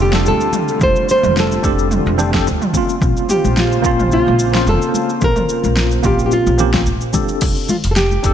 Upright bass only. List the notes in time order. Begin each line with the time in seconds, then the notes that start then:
Already playing: F1
0.27 D2
0.82 F1
1.24 F1
1.64 F1
2.07 F1
2.47 D2
3.02 A#1
3.45 A#1
3.85 A#1
4.28 A#1
4.67 F1
5.22 A#1
5.64 A#1
6.05 A#1
6.47 A#1
6.87 A#2
7.42 F1
7.85 F1
8.24 F1